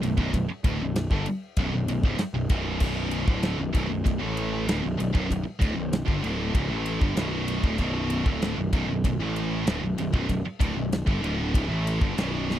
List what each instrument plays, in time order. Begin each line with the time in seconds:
0.02 picked electric bass B0, distorted electric guitar B1 F#2, ride
0.18 picked electric bass B0, distorted electric guitar B1 F#2, kick
0.33 picked electric bass B0, distorted electric guitar B1 F#2, kick, ride
0.48 muted picked electric bass stroke, muted distorted electric guitar stroke
0.64 picked electric bass D1, distorted electric guitar D2 A2, kick, ride
0.79 picked electric bass B0, distorted electric guitar B1 F#2
0.96 snare, ride
1.11 picked electric bass G1, distorted electric guitar G2 D3, kick
1.26 ride
1.57 picked electric bass B0, distorted electric guitar B1 F#2, kick, ride
1.73 picked electric bass B0, distorted electric guitar B1 F#2
1.87 picked electric bass B0, distorted electric guitar B1 F#2, ride
2.03 picked electric bass C#1, distorted electric guitar C#2 G#2, kick
2.18 muted picked electric bass stroke, muted distorted electric guitar stroke, snare, ride
2.34 picked electric bass B0, distorted electric guitar B1 F#2
2.49 picked electric bass B0, distorted electric guitar B1 F#2 B2, kick, ride
2.80 picked electric bass B0, distorted electric guitar B1 F#2 B2, kick, crash
3.11 ride
3.27 picked electric bass D1, distorted electric guitar D2 A2 D3, kick
3.43 snare, ride
3.58 picked electric bass B0, distorted electric guitar B1 F#2
3.73 picked electric bass B0, distorted electric guitar B1 F#2, kick, ride
3.89 picked electric bass B0, distorted electric guitar B1 F#2
4.04 picked electric bass B0, distorted electric guitar B1 F#2, kick, ride
4.19 picked electric bass A1, distorted electric guitar A2 E3 A3
4.37 ride
4.67 picked electric bass D1, distorted electric guitar D2 A2, snare, ride
4.82 picked electric bass B0, distorted electric guitar B1 F#2
4.97 picked electric bass B0, distorted electric guitar B1 F#2, ride
5.13 picked electric bass B0, distorted electric guitar B1 F#2, kick
5.28 picked electric bass B0, distorted electric guitar B1 F#2, kick, ride
5.44 muted distorted electric guitar stroke, muted picked electric bass stroke
5.59 picked electric bass D1, distorted electric guitar D2 A2, kick, ride
5.75 picked electric bass B0, distorted electric guitar B1 F#2
5.93 snare, ride
6.06 picked electric bass G1, distorted electric guitar G2 D3, kick
6.22 picked electric bass D1, distorted electric guitar D2 A2 D3, ride
6.53 picked electric bass C#1, distorted electric guitar C#2 G#2, kick, ride
6.68 picked electric bass A1, distorted electric guitar A2 E3 A3
6.86 ride
7.00 picked electric bass G1, distorted electric guitar G2 D3, kick
7.16 picked electric bass B0, distorted electric guitar B1 F#2 B2, snare, ride
7.48 ride
7.63 picked electric bass D1, distorted electric guitar D2 A2, kick
7.78 picked electric bass B0, distorted electric guitar B1 F#2 B2, kick, ride
8.10 ride
8.25 picked electric bass D1, distorted electric guitar D2 A2 D3, kick
8.42 snare, ride
8.55 picked electric bass B0, distorted electric guitar B1 F#2
8.73 picked electric bass B0, distorted electric guitar B1 F#2, kick, ride
8.87 picked electric bass B0, distorted electric guitar B1 F#2
9.04 picked electric bass B0, distorted electric guitar B1 F#2, kick, ride
9.19 picked electric bass A1, distorted electric guitar A2 E3 A3
9.36 ride
9.66 picked electric bass D1, distorted electric guitar D2 A2, snare, ride
9.81 picked electric bass B0, distorted electric guitar B1 F#2
9.97 picked electric bass B0, distorted electric guitar B1 F#2, ride
10.13 picked electric bass B0, distorted electric guitar B1 F#2, kick
10.28 picked electric bass B0, distorted electric guitar B1 F#2, kick, ride
10.44 muted picked electric bass stroke, muted distorted electric guitar stroke
10.60 picked electric bass D1, distorted electric guitar D2 A2, kick, ride
10.74 picked electric bass B0, distorted electric guitar B1 F#2
10.92 snare, ride
11.06 picked electric bass G1, distorted electric guitar G2 D3, kick
11.22 picked electric bass D1, distorted electric guitar D2 A2 D3, ride
11.54 picked electric bass C#1, distorted electric guitar C#2 G#2, kick, ride
11.69 picked electric bass A1, distorted electric guitar A2 E3 A3
11.87 ride
12.00 picked electric bass G1, distorted electric guitar G2 D3, kick
12.16 picked electric bass B0, distorted electric guitar B1 F#2 B2, snare, ride
12.50 snare